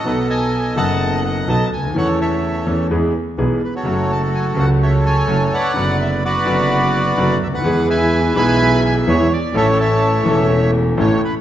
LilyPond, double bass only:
\new Staff \with { instrumentName = "Double bass" } { \clef bass \time 4/4 \key a \major \tempo 4 = 126 b,,4. fis,,4. b,,8 d,8 | e,4. e,8 e,8 r8 b,,8 r8 | fis,,4. cis,4. fis,,8 r8 | fis,,4. fis,,4. fis,,8 d,8 |
e,4. b,,4. e,8 r8 | a,,4. e,,4. a,,8 r8 | }